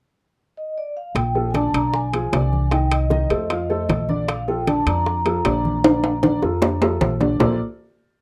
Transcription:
0.57 0.77 D#5 medium
0.78 0.86 D5 medium
0.97 1.15 F5 medium
1.15 1.70 A#1 medium
1.15 1.48 G5 loud
1.15 high bongo medium
1.15 high conga soft
1.15 high timbale medium
1.35 1.51 F3 medium
1.35 1.51 F4 medium
1.35 1.51 A4 medium
1.35 high bongo soft
1.35 high conga soft
1.50 1.55 G#5 medium
1.50 high conga medium
1.54 1.71 D3 medium
1.54 1.71 D4 medium
1.54 1.71 D5 medium
1.54 1.75 A5 medium
1.54 high bongo medium
1.54 high timbale medium
1.74 2.29 B1 medium
1.74 2.06 D3 medium
1.74 2.06 D4 medium
1.74 2.07 D5 medium
1.74 high bongo soft
1.74 high conga soft
1.74 high timbale medium
1.94 2.74 G#5 loud
1.94 high bongo medium
1.94 high conga soft
2.13 2.29 F3 medium
2.13 2.29 F4 medium
2.13 2.30 G#4 medium
2.13 high bongo soft
2.13 high conga soft
2.13 high timbale medium
2.32 3.24 C2 medium
2.32 2.65 D3 medium
2.32 2.65 D4 medium
2.32 2.65 D5 medium
2.32 high bongo soft
2.32 low bongo medium
2.32 high conga soft
2.32 high timbale medium
2.32 low timbale medium
2.53 high conga medium
2.71 3.04 D#3 medium
2.71 3.04 D#4 medium
2.71 3.04 D#5 medium
2.71 2.92 G5 loud
2.71 high bongo medium
2.71 high timbale medium
2.91 3.66 D#5 medium
2.91 high bongo soft
2.91 high conga soft
2.91 high timbale loud
3.10 3.27 D#3 medium
3.10 3.27 D#4 medium
3.10 3.27 D#5 medium
3.10 high bongo medium
3.10 high conga medium
3.30 3.85 F2 medium
3.30 3.47 A3 medium
3.30 3.47 A4 medium
3.30 3.47 C5 medium
3.30 high bongo soft
3.30 high conga soft
3.30 high timbale medium
3.50 3.66 F3 medium
3.50 3.66 F4 medium
3.50 3.66 F5 medium
3.50 high bongo medium
3.50 high conga soft
3.50 high timbale medium
3.69 4.02 A3 medium
3.69 4.02 A4 medium
3.69 4.02 C5 medium
3.69 4.06 D#5 medium
3.69 high bongo soft
3.69 high conga soft
3.89 4.81 A#1 medium
3.89 high bongo soft
3.89 low bongo medium
3.89 high conga medium
3.89 high timbale medium
4.09 4.41 D3 medium
4.09 4.41 D4 medium
4.09 4.41 D5 medium
4.09 4.29 D5 medium
4.09 high conga medium
4.28 4.48 F5 medium
4.28 high bongo medium
4.28 high timbale medium
4.48 4.64 F3 medium
4.48 4.64 F4 medium
4.48 4.64 A4 medium
4.48 4.68 G5 medium
4.48 high bongo soft
4.48 high conga soft
4.67 4.83 D3 medium
4.67 4.83 D4 medium
4.67 4.84 D5 medium
4.67 4.88 A5 loud
4.67 high bongo medium
4.67 high conga medium
4.67 high timbale medium
4.86 5.41 F2 medium
4.86 5.19 D3 medium
4.86 5.19 D4 medium
4.86 5.19 D5 medium
4.86 high bongo soft
4.86 high conga soft
4.86 high timbale medium
5.06 high bongo medium
5.06 high conga soft
5.25 5.41 F3 medium
5.25 5.42 F4 medium
5.25 5.42 A4 medium
5.25 high bongo soft
5.25 high conga soft
5.25 high timbale medium
5.45 6.36 A#1 medium
5.45 5.77 D3 medium
5.45 5.77 D4 medium
5.45 5.77 D5 medium
5.45 high bongo soft
5.45 low bongo medium
5.45 high conga soft
5.45 high timbale medium
5.45 low timbale medium
5.65 high conga medium
5.84 6.16 D3 medium
5.84 6.16 D4 medium
5.84 6.16 D5 medium
5.84 high bongo medium
5.84 high conga soft
5.84 high timbale loud
6.04 high bongo soft
6.04 high conga soft
6.04 high timbale medium
6.23 6.39 D3 medium
6.23 6.39 D4 medium
6.23 6.39 D5 medium
6.23 high bongo medium
6.23 high conga medium
6.23 high timbale medium
6.42 6.97 F2 medium
6.42 6.58 F3 medium
6.42 6.59 F4 medium
6.42 6.59 A4 medium
6.42 high bongo medium
6.42 high conga soft
6.62 6.78 D3 medium
6.62 6.78 D4 medium
6.62 6.78 D5 medium
6.62 low bongo loud
6.62 high conga soft
6.62 low timbale medium
6.81 7.13 F3 medium
6.81 7.13 F4 medium
6.81 7.14 A4 medium
6.81 high conga soft
6.81 low timbale loud
7.01 7.35 A#1 medium
7.01 low bongo medium
7.01 high conga medium
7.01 low timbale medium
7.20 7.36 D3 medium
7.20 7.36 D4 medium
7.20 7.37 D5 medium
7.20 low bongo medium
7.20 high conga medium
7.20 low timbale medium
7.39 7.58 A#1 medium
7.39 7.58 A#3 medium
7.39 7.58 F4 medium
7.39 7.58 A4 medium
7.39 7.58 A#4 medium
7.39 7.58 C5 medium
7.39 7.58 D5 medium
7.39 low bongo loud
7.39 low conga medium
7.39 low timbale medium

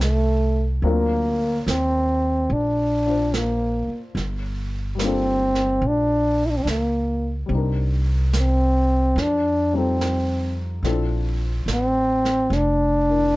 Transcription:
0.00 0.79 C2 medium
0.00 0.83 G3 soft
0.00 0.67 A3 medium
0.00 0.82 C4 soft
0.00 0.83 D4 soft
0.00 0.85 E4 soft
0.00 0.83 F4 soft
0.00 0.84 A4 medium
0.00 snare soft
0.00 hi-hat pedal soft
0.82 1.62 D2 medium
0.82 4.17 F#3 medium
0.82 1.63 A#3 medium
0.82 4.16 C4 medium
0.82 3.04 D4 soft
0.82 3.05 F4 medium
0.82 4.17 A#4 medium
0.82 brush sweep soft
1.67 2.46 D#2 medium
1.67 2.54 C4 medium
1.67 snare soft
1.67 hi-hat pedal medium
2.50 3.85 A#1 medium
2.50 3.38 D4 medium
2.50 brush sweep soft
3.06 4.16 D4 soft
3.06 4.17 F4 soft
3.06 4.18 C5 soft
3.34 4.04 A#3 medium
3.34 snare soft
3.34 hi-hat pedal soft
3.88 muted upright bass stroke soft
4.15 5.78 G1 medium
4.15 brush sweep soft
4.15 snare soft
4.95 7.44 G3 soft
4.95 7.49 A#3 soft
4.99 7.50 D4 soft
4.99 snare soft
4.99 hi-hat pedal medium
5.03 5.89 C4 medium
5.03 7.51 F4 soft
5.03 7.53 A4 medium
5.55 snare soft
5.82 6.61 A#1 medium
5.82 brush sweep soft
5.87 6.47 D4 medium
6.46 6.52 E4 medium
6.50 6.59 D4 medium
6.57 6.65 C4 medium
6.63 7.45 C#2 medium
6.63 6.68 D4 medium
6.67 7.34 A#3 medium
6.67 snare soft
6.67 hi-hat pedal soft
7.46 9.12 C2 medium
7.46 9.14 G3 soft
7.46 9.16 C4 soft
7.50 9.17 D4 soft
7.50 brush sweep soft
7.55 9.19 D#4 soft
7.55 9.20 A#4 soft
8.33 snare soft
8.33 hi-hat pedal medium
8.40 9.23 C4 medium
9.16 10.79 F2 medium
9.16 brush sweep soft
9.16 snare soft
9.22 9.79 D4 medium
9.73 10.83 G3 soft
9.73 10.83 C4 soft
9.73 10.85 D#4 soft
9.73 10.85 F4 soft
9.78 10.59 C4 medium
9.78 10.84 A4 soft
10.01 snare soft
10.01 hi-hat pedal soft
10.83 11.62 A#1 medium
10.83 13.36 F3 soft
10.83 13.36 C4 soft
10.83 13.07 D4 soft
10.83 13.08 E4 soft
10.83 13.36 A4 medium
10.83 brush sweep soft
10.83 snare soft
11.66 12.46 A1 medium
11.66 snare soft
11.66 hi-hat pedal soft
11.73 12.57 C4 loud
12.25 snare soft
12.50 13.36 F1 medium
12.50 brush sweep soft
12.50 snare soft
12.55 13.36 D4 medium
13.08 13.36 D4 soft
13.08 13.36 E4 soft
13.08 13.36 A#4 soft

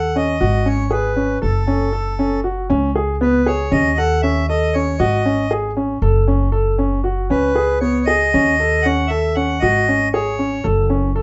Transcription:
0.00 0.38 D#2 medium
0.00 0.17 F#5 medium
0.16 0.35 C#4 medium
0.16 0.68 D#5 medium
0.41 1.41 G#1 medium
0.41 0.60 F#4 medium
0.66 0.85 C#4 medium
0.66 0.92 C#5 medium
0.91 1.10 G#4 medium
0.91 1.39 B4 medium
1.16 1.36 C#4 medium
1.42 2.68 F#1 medium
1.42 1.61 A4 medium
1.42 2.40 A4 medium
1.67 1.87 C#4 medium
1.93 2.12 A4 medium
2.19 2.38 C#4 medium
2.44 2.63 F#4 medium
2.70 3.70 C#2 medium
2.70 2.89 C#4 medium
2.95 3.14 G#4 medium
3.21 3.40 B3 medium
3.21 3.48 B4 medium
3.46 3.65 G#4 medium
3.46 3.73 C#5 medium
3.71 4.97 D#2 medium
3.71 3.91 C#4 medium
3.71 3.98 D#5 medium
3.98 4.17 A4 medium
3.98 4.21 F#5 medium
4.22 4.42 C#4 medium
4.22 4.46 E5 medium
4.49 4.68 A4 medium
4.49 4.75 D#5 medium
4.74 4.94 C#4 medium
4.74 5.00 C#5 medium
4.99 6.00 G#1 medium
4.99 5.19 F#4 medium
4.99 5.53 D#5 medium
5.26 5.45 C#4 medium
5.51 5.70 G#4 medium
5.77 5.96 C#4 medium
6.02 7.29 F#1 medium
6.02 6.21 A4 medium
6.28 6.47 C#4 medium
6.52 6.72 A4 medium
6.78 6.98 C#4 medium
7.04 7.24 F#4 medium
7.30 8.32 C#2 medium
7.30 7.50 C#4 medium
7.30 7.79 B4 medium
7.55 7.75 G#4 medium
7.81 8.01 B3 medium
7.81 8.06 C#5 medium
8.06 8.27 G#4 medium
8.06 8.86 D#5 medium
8.34 9.60 D#2 medium
8.34 8.53 C#4 medium
8.60 8.79 A4 medium
8.82 9.05 C#4 medium
8.82 9.11 F#5 medium
9.07 9.30 A4 medium
9.07 9.36 E5 medium
9.35 9.56 C#4 medium
9.35 9.63 F#5 medium
9.60 10.63 G#1 medium
9.60 9.82 F#4 medium
9.60 10.09 D#5 medium
9.88 10.08 C#4 medium
10.13 10.33 G#4 medium
10.13 10.67 C#5 medium
10.39 10.58 C#4 medium
10.64 11.22 F#1 medium
10.64 10.83 A4 medium
10.90 11.09 C#4 medium
11.16 11.22 A4 medium

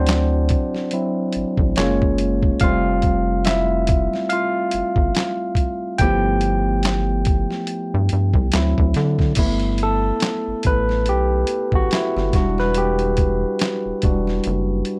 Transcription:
0.00 0.51 D2 loud
0.00 0.93 F#3 medium
0.00 0.93 C4 medium
0.00 1.78 D4 medium
0.00 0.94 E4 medium
0.00 1.78 F#4 medium
0.00 0.70 C5 medium
0.00 1.78 D5 medium
0.00 1.78 F#5 medium
0.07 snare loud
0.07 clap medium
0.07 closed hi-hat medium
0.49 kick loud
0.49 closed hi-hat medium
0.75 snare soft
0.91 1.31 F#3 soft
0.91 1.31 C4 soft
0.91 1.31 E4 soft
0.91 closed hi-hat medium
1.33 1.45 A1 soft
1.33 closed hi-hat medium
1.57 1.75 A1 medium
1.57 kick medium
1.76 2.52 F#1 medium
1.76 2.58 G#3 medium
1.76 2.58 A#3 medium
1.76 2.59 C#4 medium
1.76 2.58 F4 medium
1.76 2.64 C#5 medium
1.76 snare medium
1.76 clap medium
1.76 closed hi-hat medium
2.02 kick medium
2.18 closed hi-hat medium
2.43 kick medium
2.60 4.08 F1 loud
2.60 5.96 G3 medium
2.60 5.96 A3 soft
2.60 5.96 C4 medium
2.60 3.48 F5 loud
2.60 kick loud
2.60 closed hi-hat medium
2.64 3.43 F4 medium
3.02 kick medium
3.02 closed hi-hat medium
3.45 4.28 E4 medium
3.45 4.33 E5 medium
3.45 snare loud
3.45 clap medium
3.45 closed hi-hat medium
3.87 kick loud
3.87 closed hi-hat medium
4.13 snare soft
4.29 5.97 F4 medium
4.29 6.04 F5 medium
4.29 closed hi-hat medium
4.71 4.83 G1 soft
4.71 closed hi-hat medium
4.96 5.13 G1 medium
4.96 kick medium
5.15 snare medium
5.15 clap medium
5.15 closed hi-hat medium
5.55 kick medium
5.55 closed hi-hat medium
5.98 7.46 G1 loud
5.98 6.58 F3 medium
5.98 6.58 A3 medium
5.98 6.58 B3 soft
5.98 6.59 E4 medium
5.98 8.50 G4 medium
5.98 8.48 G5 loud
5.98 kick loud
5.98 closed hi-hat medium
6.41 closed hi-hat medium
6.83 snare loud
6.83 clap medium
6.83 closed hi-hat medium
7.25 kick loud
7.25 closed hi-hat medium
7.51 snare soft
7.67 closed hi-hat medium
7.94 8.10 G2 medium
8.09 8.33 G2 medium
8.09 closed hi-hat medium
8.34 8.51 C2 medium
8.34 kick medium
8.52 8.75 D2 medium
8.52 9.12 F#3 medium
8.52 9.12 C4 soft
8.52 9.12 E4 medium
8.52 snare loud
8.52 clap medium
8.52 closed hi-hat medium
8.78 8.94 D2 medium
8.78 kick medium
8.94 9.33 D3 loud
8.94 snare soft
8.94 closed hi-hat medium
9.19 kick medium
9.19 snare soft
9.35 10.12 G1 loud
9.35 12.29 A3 medium
9.35 12.30 B3 soft
9.35 11.93 E4 medium
9.35 kick loud
9.35 closed hi-hat medium
9.35 crash medium
9.60 closed hi-hat soft
9.78 closed hi-hat medium
9.83 10.68 A4 medium
10.20 snare loud
10.20 clap medium
10.20 closed hi-hat medium
10.48 10.55 A1 soft
10.63 11.10 A1 loud
10.63 10.85 B4 medium
10.63 kick medium
10.63 closed hi-hat medium
10.89 snare soft
11.06 11.45 B1 medium
11.06 11.76 G4 medium
11.06 closed hi-hat medium
11.47 closed hi-hat medium
11.72 11.89 A1 medium
11.72 11.93 F#4 medium
11.72 kick medium
11.91 12.60 E4 medium
11.91 snare loud
11.91 clap medium
11.91 closed hi-hat medium
12.17 12.32 G1 loud
12.17 snare soft
12.33 13.46 E1 medium
12.33 12.92 G3 medium
12.33 12.92 D4 soft
12.33 12.93 F#4 medium
12.33 kick loud
12.33 snare soft
12.33 closed hi-hat medium
12.58 12.77 B4 medium
12.58 snare soft
12.74 14.84 G4 medium
12.74 closed hi-hat medium
12.99 closed hi-hat soft
13.17 kick medium
13.17 closed hi-hat medium
13.59 snare loud
13.59 clap medium
13.59 closed hi-hat medium
13.86 13.93 E1 soft
14.02 14.41 E1 medium
14.02 14.41 G3 soft
14.02 14.41 D4 soft
14.02 14.41 F#4 soft
14.02 kick loud
14.02 closed hi-hat medium
14.27 snare soft
14.44 14.83 F#1 loud
14.44 closed hi-hat medium
14.85 closed hi-hat medium

